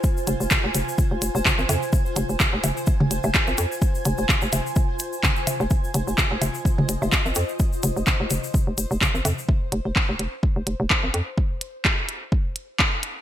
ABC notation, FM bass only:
X:1
M:4/4
L:1/16
Q:"Swing 16ths" 1/4=127
K:Fm
V:1 name="FM bass" clef=bass
z2 F,,, F,,, z F,,, F,,, z2 F,,, F,,, F,,, z A,,, F,, z | z2 F,,, F,,, z F,,, F,,, z2 F,,, F,,, F,,, z A,,, F,, z | z2 F,,, F,,, z F,,, F,,, z8 F,,, | z2 F,,, F,,, z F,,, F,,, z2 F,,, F,,, F,,, z A,,, F,, z |
z2 F,,, F,,, z F,,, F,,, z2 F,,, F,,, F,,, z A,,, F,, z | z2 F,,, F,,, z F,,, F,,, z2 F,,, F,,, F,,, z A,,, F,, z | z16 |]